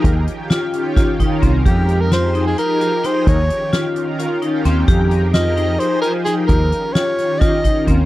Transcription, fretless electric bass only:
\new Staff \with { instrumentName = "Fretless electric bass" } { \clef bass \time 7/8 \key f \minor \tempo 4 = 130 ees,8 r2 r8 c,8 | f,2 r4. | ees,8 r2 r8 ees,8 | f,2 r4. |
ees,8 r2 r8 ees,8 | }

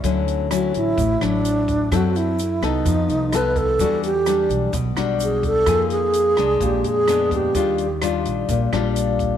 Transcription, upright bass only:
\new Staff \with { instrumentName = "Upright bass" } { \clef bass \time 4/4 \key e \dorian \tempo 4 = 128 d,4. a,,8 a,,8 a,,4. | fis,4. c,8 f,8 c,4. | e,4. b,,8 b,,8 b,,4. | f,4. c,8 bes,,8 f,4. |
ees,4. bes,,8 bes,,8 bes,,4. | }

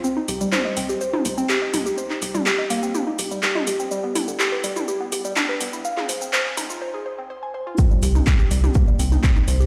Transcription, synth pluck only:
\new Staff \with { instrumentName = "Synth pluck" } { \time 4/4 \key c \minor \tempo 4 = 124 c'16 ees'16 g'16 g16 c''16 ees''16 c'16 g'16 c''16 ees'16 c''16 c'16 g'16 ees''16 ees'16 g'16 | c''16 ees'16 g'16 g16 g'16 ees''16 bes16 c'16 g'16 ees'16 g'16 g16 g'16 ees''16 g'16 c'16 | g16 b16 e'16 d16 g'16 b'16 g16 e'16 g'16 b16 g'16 g16 d'16 b'16 b16 e'16 | f''16 aes'16 c''16 c'16 c''16 aes''16 ees'16 f'16 c''16 aes'16 c''16 c'16 c''16 aes''16 c''16 f'16 |
c'16 g16 g'16 ees'16 c'16 g'16 g16 g'16 bes16 g16 c'16 ees'16 c'16 ees'16 c''16 g'16 | }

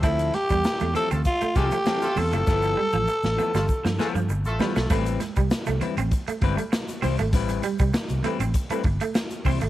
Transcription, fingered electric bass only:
\new Staff \with { instrumentName = "Fingered electric bass" } { \clef bass \time 4/4 \key a \minor \tempo 4 = 99 d,8 r16 e,16 r16 e,16 r16 d,16 r8 c,16 r8. e,16 fis,,16 | g,,8 r16 a,,16 r16 a,,16 r16 g,,16 r16 g,16 r16 g,16 g,,16 a,,16 r16 b,,16 | a,,8 r16 c,16 r16 c,16 r16 a,,16 r8 g,,16 r8. c,16 gis,,16 | a,,8 r16 c,16 r16 c,16 r16 a,,16 r8 g,,16 r8. c,16 gis,,16 | }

